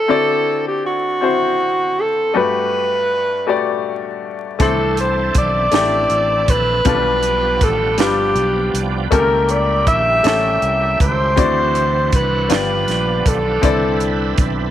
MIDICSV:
0, 0, Header, 1, 6, 480
1, 0, Start_track
1, 0, Key_signature, 1, "major"
1, 0, Tempo, 752823
1, 54, Time_signature, 6, 3, 24, 8
1, 9377, End_track
2, 0, Start_track
2, 0, Title_t, "Alto saxophone"
2, 0, Program_c, 0, 65
2, 0, Note_on_c, 0, 69, 86
2, 423, Note_off_c, 0, 69, 0
2, 431, Note_on_c, 0, 67, 66
2, 535, Note_off_c, 0, 67, 0
2, 550, Note_on_c, 0, 66, 76
2, 1277, Note_on_c, 0, 69, 77
2, 1287, Note_off_c, 0, 66, 0
2, 1514, Note_on_c, 0, 71, 81
2, 1523, Note_off_c, 0, 69, 0
2, 2464, Note_off_c, 0, 71, 0
2, 2945, Note_on_c, 0, 69, 75
2, 3163, Note_off_c, 0, 69, 0
2, 3189, Note_on_c, 0, 72, 66
2, 3405, Note_off_c, 0, 72, 0
2, 3430, Note_on_c, 0, 74, 84
2, 4144, Note_on_c, 0, 71, 81
2, 4154, Note_off_c, 0, 74, 0
2, 4867, Note_on_c, 0, 69, 74
2, 4877, Note_off_c, 0, 71, 0
2, 5095, Note_off_c, 0, 69, 0
2, 5099, Note_on_c, 0, 67, 77
2, 5611, Note_off_c, 0, 67, 0
2, 5823, Note_on_c, 0, 70, 87
2, 6061, Note_on_c, 0, 74, 77
2, 6071, Note_off_c, 0, 70, 0
2, 6293, Note_off_c, 0, 74, 0
2, 6297, Note_on_c, 0, 76, 97
2, 6989, Note_off_c, 0, 76, 0
2, 7018, Note_on_c, 0, 72, 96
2, 7749, Note_on_c, 0, 71, 74
2, 7759, Note_off_c, 0, 72, 0
2, 7981, Note_off_c, 0, 71, 0
2, 7986, Note_on_c, 0, 71, 72
2, 8466, Note_on_c, 0, 69, 72
2, 8475, Note_off_c, 0, 71, 0
2, 9178, Note_off_c, 0, 69, 0
2, 9377, End_track
3, 0, Start_track
3, 0, Title_t, "Upright piano"
3, 0, Program_c, 1, 0
3, 0, Control_c, 1, 64, 127
3, 0, Note_on_c, 1, 60, 52
3, 0, Note_on_c, 1, 71, 50
3, 0, Note_on_c, 1, 76, 60
3, 51, Note_off_c, 1, 60, 0
3, 51, Note_on_c, 1, 60, 72
3, 54, Note_on_c, 1, 64, 61
3, 58, Note_on_c, 1, 50, 53
3, 60, Note_on_c, 1, 66, 60
3, 62, Control_c, 1, 64, 0
3, 65, Note_off_c, 1, 71, 0
3, 65, Note_on_c, 1, 74, 79
3, 68, Note_off_c, 1, 76, 0
3, 165, Control_c, 1, 64, 127
3, 654, Note_off_c, 1, 60, 0
3, 656, Note_off_c, 1, 64, 0
3, 659, Note_off_c, 1, 66, 0
3, 661, Note_off_c, 1, 74, 0
3, 750, Note_off_c, 1, 50, 0
3, 770, Note_on_c, 1, 60, 57
3, 778, Note_on_c, 1, 64, 51
3, 779, Note_on_c, 1, 66, 53
3, 788, Note_on_c, 1, 72, 60
3, 1374, Note_off_c, 1, 60, 0
3, 1378, Note_off_c, 1, 64, 0
3, 1378, Note_off_c, 1, 66, 0
3, 1383, Note_off_c, 1, 72, 0
3, 1490, Note_on_c, 1, 57, 68
3, 1495, Note_on_c, 1, 66, 64
3, 1500, Note_on_c, 1, 43, 52
3, 1500, Note_on_c, 1, 67, 59
3, 1502, Control_c, 1, 64, 0
3, 1506, Note_on_c, 1, 71, 74
3, 1623, Control_c, 1, 64, 127
3, 2094, Note_off_c, 1, 57, 0
3, 2096, Note_off_c, 1, 66, 0
3, 2099, Note_off_c, 1, 67, 0
3, 2102, Note_off_c, 1, 71, 0
3, 2191, Note_off_c, 1, 43, 0
3, 2210, Note_on_c, 1, 57, 62
3, 2216, Note_on_c, 1, 66, 61
3, 2222, Note_on_c, 1, 67, 59
3, 2227, Note_on_c, 1, 74, 72
3, 2814, Note_off_c, 1, 57, 0
3, 2817, Note_off_c, 1, 66, 0
3, 2820, Note_off_c, 1, 67, 0
3, 2822, Note_off_c, 1, 74, 0
3, 2925, Note_on_c, 1, 57, 62
3, 2932, Note_on_c, 1, 62, 60
3, 2933, Note_on_c, 1, 60, 55
3, 2935, Note_on_c, 1, 64, 62
3, 2941, Note_on_c, 1, 72, 72
3, 2943, Control_c, 1, 64, 0
3, 3048, Control_c, 1, 64, 127
3, 3531, Note_off_c, 1, 57, 0
3, 3535, Note_off_c, 1, 62, 0
3, 3536, Note_off_c, 1, 64, 0
3, 3539, Note_off_c, 1, 72, 0
3, 3628, Note_off_c, 1, 60, 0
3, 3643, Note_on_c, 1, 57, 49
3, 3647, Note_on_c, 1, 62, 51
3, 3652, Note_on_c, 1, 64, 52
3, 3659, Note_on_c, 1, 67, 62
3, 4250, Note_off_c, 1, 57, 0
3, 4252, Note_off_c, 1, 62, 0
3, 4255, Note_off_c, 1, 64, 0
3, 4258, Note_off_c, 1, 67, 0
3, 4367, Note_on_c, 1, 55, 62
3, 4371, Note_on_c, 1, 62, 60
3, 4375, Note_on_c, 1, 47, 57
3, 4378, Note_on_c, 1, 65, 62
3, 4381, Control_c, 1, 64, 0
3, 4383, Note_on_c, 1, 69, 60
3, 4420, Note_off_c, 1, 69, 0
3, 4427, Note_on_c, 1, 71, 74
3, 4477, Control_c, 1, 64, 127
3, 4972, Note_off_c, 1, 55, 0
3, 4974, Note_off_c, 1, 62, 0
3, 4977, Note_off_c, 1, 65, 0
3, 5002, Note_off_c, 1, 71, 0
3, 5069, Note_off_c, 1, 47, 0
3, 5088, Note_on_c, 1, 55, 53
3, 5090, Note_on_c, 1, 62, 50
3, 5098, Note_on_c, 1, 65, 46
3, 5103, Note_on_c, 1, 71, 60
3, 5693, Note_off_c, 1, 55, 0
3, 5694, Note_off_c, 1, 62, 0
3, 5697, Note_off_c, 1, 65, 0
3, 5700, Note_off_c, 1, 71, 0
3, 5806, Note_on_c, 1, 57, 66
3, 5810, Note_on_c, 1, 58, 67
3, 5812, Note_on_c, 1, 49, 52
3, 5816, Note_on_c, 1, 67, 62
3, 5820, Control_c, 1, 64, 0
3, 5822, Note_on_c, 1, 69, 64
3, 5859, Note_off_c, 1, 69, 0
3, 5863, Note_on_c, 1, 70, 75
3, 5934, Control_c, 1, 64, 127
3, 6411, Note_off_c, 1, 57, 0
3, 6413, Note_off_c, 1, 58, 0
3, 6416, Note_off_c, 1, 67, 0
3, 6440, Note_off_c, 1, 70, 0
3, 6507, Note_off_c, 1, 49, 0
3, 6525, Note_on_c, 1, 57, 55
3, 6534, Note_on_c, 1, 61, 52
3, 6538, Note_on_c, 1, 67, 48
3, 6544, Note_on_c, 1, 69, 66
3, 7131, Note_off_c, 1, 57, 0
3, 7135, Note_off_c, 1, 61, 0
3, 7137, Note_off_c, 1, 67, 0
3, 7140, Note_off_c, 1, 69, 0
3, 7241, Note_on_c, 1, 60, 69
3, 7246, Note_on_c, 1, 64, 66
3, 7250, Note_on_c, 1, 50, 57
3, 7253, Note_on_c, 1, 66, 64
3, 7259, Note_on_c, 1, 74, 72
3, 7261, Control_c, 1, 64, 0
3, 7378, Control_c, 1, 64, 127
3, 7848, Note_off_c, 1, 60, 0
3, 7851, Note_off_c, 1, 64, 0
3, 7854, Note_off_c, 1, 66, 0
3, 7857, Note_off_c, 1, 74, 0
3, 7945, Note_off_c, 1, 50, 0
3, 7961, Note_on_c, 1, 59, 54
3, 7966, Note_on_c, 1, 65, 51
3, 7969, Note_on_c, 1, 43, 53
3, 7971, Note_on_c, 1, 67, 49
3, 7977, Note_on_c, 1, 74, 60
3, 7980, Control_c, 1, 64, 0
3, 8101, Control_c, 1, 64, 127
3, 8568, Note_off_c, 1, 59, 0
3, 8570, Note_off_c, 1, 65, 0
3, 8573, Note_off_c, 1, 67, 0
3, 8576, Note_off_c, 1, 74, 0
3, 8664, Note_off_c, 1, 43, 0
3, 8680, Note_on_c, 1, 60, 69
3, 8684, Note_on_c, 1, 64, 63
3, 8689, Note_on_c, 1, 50, 50
3, 8692, Note_on_c, 1, 71, 60
3, 8699, Control_c, 1, 64, 0
3, 8700, Note_on_c, 1, 74, 72
3, 8825, Control_c, 1, 64, 127
3, 9287, Note_off_c, 1, 60, 0
3, 9289, Note_off_c, 1, 64, 0
3, 9293, Note_off_c, 1, 71, 0
3, 9297, Note_off_c, 1, 74, 0
3, 9377, Note_off_c, 1, 50, 0
3, 9377, End_track
4, 0, Start_track
4, 0, Title_t, "Tonewheel organ"
4, 0, Program_c, 2, 16
4, 2926, Note_on_c, 2, 69, 55
4, 2930, Note_on_c, 2, 60, 47
4, 2931, Note_on_c, 2, 62, 47
4, 2933, Note_on_c, 2, 52, 50
4, 4344, Note_off_c, 2, 69, 0
4, 4346, Note_off_c, 2, 60, 0
4, 4347, Note_off_c, 2, 62, 0
4, 4348, Note_off_c, 2, 52, 0
4, 4374, Note_on_c, 2, 58, 38
4, 4377, Note_on_c, 2, 53, 56
4, 4378, Note_on_c, 2, 67, 56
4, 4379, Note_on_c, 2, 62, 45
4, 4415, Note_off_c, 2, 58, 0
4, 4419, Note_on_c, 2, 59, 49
4, 5789, Note_off_c, 2, 53, 0
4, 5790, Note_off_c, 2, 62, 0
4, 5790, Note_off_c, 2, 67, 0
4, 5810, Note_off_c, 2, 59, 0
4, 5815, Note_on_c, 2, 64, 49
4, 5818, Note_on_c, 2, 55, 57
4, 5819, Note_on_c, 2, 68, 47
4, 5857, Note_off_c, 2, 68, 0
4, 5863, Note_on_c, 2, 67, 56
4, 7228, Note_off_c, 2, 64, 0
4, 7230, Note_off_c, 2, 55, 0
4, 7252, Note_off_c, 2, 67, 0
4, 7259, Note_on_c, 2, 62, 49
4, 7259, Note_on_c, 2, 66, 55
4, 7261, Note_on_c, 2, 52, 49
4, 7263, Note_on_c, 2, 60, 50
4, 7967, Note_off_c, 2, 62, 0
4, 7974, Note_on_c, 2, 67, 64
4, 7975, Note_off_c, 2, 66, 0
4, 7975, Note_on_c, 2, 53, 55
4, 7975, Note_on_c, 2, 62, 52
4, 7976, Note_off_c, 2, 52, 0
4, 7976, Note_on_c, 2, 57, 41
4, 7977, Note_off_c, 2, 60, 0
4, 8014, Note_on_c, 2, 59, 53
4, 8015, Note_off_c, 2, 57, 0
4, 8689, Note_off_c, 2, 62, 0
4, 8692, Note_off_c, 2, 67, 0
4, 8693, Note_off_c, 2, 53, 0
4, 8695, Note_on_c, 2, 60, 45
4, 8695, Note_on_c, 2, 64, 47
4, 8696, Note_on_c, 2, 62, 43
4, 8698, Note_on_c, 2, 71, 56
4, 8712, Note_off_c, 2, 59, 0
4, 9377, Note_off_c, 2, 60, 0
4, 9377, Note_off_c, 2, 62, 0
4, 9377, Note_off_c, 2, 64, 0
4, 9377, Note_off_c, 2, 71, 0
4, 9377, End_track
5, 0, Start_track
5, 0, Title_t, "Fingered electric bass"
5, 0, Program_c, 3, 33
5, 2931, Note_on_c, 3, 36, 73
5, 3387, Note_off_c, 3, 36, 0
5, 3410, Note_on_c, 3, 35, 81
5, 3632, Note_off_c, 3, 35, 0
5, 3650, Note_on_c, 3, 33, 78
5, 3872, Note_off_c, 3, 33, 0
5, 3889, Note_on_c, 3, 33, 67
5, 4112, Note_off_c, 3, 33, 0
5, 4132, Note_on_c, 3, 34, 74
5, 4354, Note_off_c, 3, 34, 0
5, 4371, Note_on_c, 3, 35, 79
5, 4850, Note_off_c, 3, 35, 0
5, 4850, Note_on_c, 3, 33, 78
5, 5088, Note_off_c, 3, 33, 0
5, 5088, Note_on_c, 3, 31, 80
5, 5311, Note_off_c, 3, 31, 0
5, 5326, Note_on_c, 3, 35, 72
5, 5550, Note_off_c, 3, 35, 0
5, 5571, Note_on_c, 3, 36, 77
5, 5793, Note_off_c, 3, 36, 0
5, 5810, Note_on_c, 3, 37, 77
5, 6291, Note_off_c, 3, 37, 0
5, 6291, Note_on_c, 3, 34, 79
5, 6513, Note_off_c, 3, 34, 0
5, 6534, Note_on_c, 3, 33, 80
5, 6754, Note_off_c, 3, 33, 0
5, 6772, Note_on_c, 3, 36, 78
5, 6993, Note_off_c, 3, 36, 0
5, 7013, Note_on_c, 3, 37, 77
5, 7234, Note_off_c, 3, 37, 0
5, 7252, Note_on_c, 3, 38, 77
5, 7706, Note_off_c, 3, 38, 0
5, 7733, Note_on_c, 3, 36, 73
5, 7953, Note_off_c, 3, 36, 0
5, 7970, Note_on_c, 3, 31, 86
5, 8192, Note_off_c, 3, 31, 0
5, 8210, Note_on_c, 3, 34, 67
5, 8432, Note_off_c, 3, 34, 0
5, 8453, Note_on_c, 3, 35, 76
5, 8673, Note_off_c, 3, 35, 0
5, 8689, Note_on_c, 3, 36, 66
5, 9144, Note_off_c, 3, 36, 0
5, 9168, Note_on_c, 3, 35, 79
5, 9377, Note_off_c, 3, 35, 0
5, 9377, End_track
6, 0, Start_track
6, 0, Title_t, "Drums"
6, 2932, Note_on_c, 9, 42, 71
6, 2933, Note_on_c, 9, 36, 82
6, 2995, Note_off_c, 9, 42, 0
6, 2996, Note_off_c, 9, 36, 0
6, 3170, Note_on_c, 9, 42, 48
6, 3234, Note_off_c, 9, 42, 0
6, 3408, Note_on_c, 9, 42, 62
6, 3411, Note_on_c, 9, 36, 78
6, 3472, Note_off_c, 9, 42, 0
6, 3475, Note_off_c, 9, 36, 0
6, 3644, Note_on_c, 9, 42, 74
6, 3661, Note_on_c, 9, 38, 105
6, 3708, Note_off_c, 9, 42, 0
6, 3724, Note_off_c, 9, 38, 0
6, 3888, Note_on_c, 9, 42, 43
6, 3951, Note_off_c, 9, 42, 0
6, 4132, Note_on_c, 9, 42, 63
6, 4133, Note_on_c, 9, 36, 85
6, 4196, Note_off_c, 9, 42, 0
6, 4197, Note_off_c, 9, 36, 0
6, 4367, Note_on_c, 9, 42, 72
6, 4371, Note_on_c, 9, 36, 80
6, 4431, Note_off_c, 9, 42, 0
6, 4435, Note_off_c, 9, 36, 0
6, 4607, Note_on_c, 9, 42, 44
6, 4671, Note_off_c, 9, 42, 0
6, 4852, Note_on_c, 9, 36, 80
6, 4852, Note_on_c, 9, 42, 61
6, 4916, Note_off_c, 9, 36, 0
6, 4916, Note_off_c, 9, 42, 0
6, 5087, Note_on_c, 9, 42, 71
6, 5103, Note_on_c, 9, 38, 100
6, 5150, Note_off_c, 9, 42, 0
6, 5167, Note_off_c, 9, 38, 0
6, 5329, Note_on_c, 9, 42, 42
6, 5392, Note_off_c, 9, 42, 0
6, 5577, Note_on_c, 9, 42, 66
6, 5641, Note_off_c, 9, 42, 0
6, 5813, Note_on_c, 9, 36, 78
6, 5813, Note_on_c, 9, 42, 74
6, 5877, Note_off_c, 9, 36, 0
6, 5877, Note_off_c, 9, 42, 0
6, 6049, Note_on_c, 9, 42, 44
6, 6112, Note_off_c, 9, 42, 0
6, 6292, Note_on_c, 9, 42, 61
6, 6293, Note_on_c, 9, 36, 80
6, 6356, Note_off_c, 9, 36, 0
6, 6356, Note_off_c, 9, 42, 0
6, 6530, Note_on_c, 9, 42, 74
6, 6546, Note_on_c, 9, 38, 97
6, 6594, Note_off_c, 9, 42, 0
6, 6610, Note_off_c, 9, 38, 0
6, 6772, Note_on_c, 9, 42, 41
6, 6836, Note_off_c, 9, 42, 0
6, 7015, Note_on_c, 9, 36, 94
6, 7018, Note_on_c, 9, 42, 66
6, 7078, Note_off_c, 9, 36, 0
6, 7082, Note_off_c, 9, 42, 0
6, 7252, Note_on_c, 9, 42, 73
6, 7253, Note_on_c, 9, 36, 83
6, 7316, Note_off_c, 9, 42, 0
6, 7317, Note_off_c, 9, 36, 0
6, 7492, Note_on_c, 9, 42, 49
6, 7556, Note_off_c, 9, 42, 0
6, 7731, Note_on_c, 9, 42, 61
6, 7732, Note_on_c, 9, 36, 82
6, 7795, Note_off_c, 9, 42, 0
6, 7796, Note_off_c, 9, 36, 0
6, 7968, Note_on_c, 9, 42, 79
6, 7984, Note_on_c, 9, 38, 97
6, 8032, Note_off_c, 9, 42, 0
6, 8048, Note_off_c, 9, 38, 0
6, 8211, Note_on_c, 9, 42, 40
6, 8224, Note_on_c, 9, 38, 28
6, 8275, Note_off_c, 9, 42, 0
6, 8288, Note_off_c, 9, 38, 0
6, 8453, Note_on_c, 9, 36, 85
6, 8457, Note_on_c, 9, 42, 66
6, 8517, Note_off_c, 9, 36, 0
6, 8520, Note_off_c, 9, 42, 0
6, 8690, Note_on_c, 9, 42, 76
6, 8691, Note_on_c, 9, 36, 80
6, 8753, Note_off_c, 9, 42, 0
6, 8755, Note_off_c, 9, 36, 0
6, 8929, Note_on_c, 9, 42, 46
6, 8992, Note_off_c, 9, 42, 0
6, 9166, Note_on_c, 9, 42, 62
6, 9169, Note_on_c, 9, 36, 87
6, 9230, Note_off_c, 9, 42, 0
6, 9233, Note_off_c, 9, 36, 0
6, 9377, End_track
0, 0, End_of_file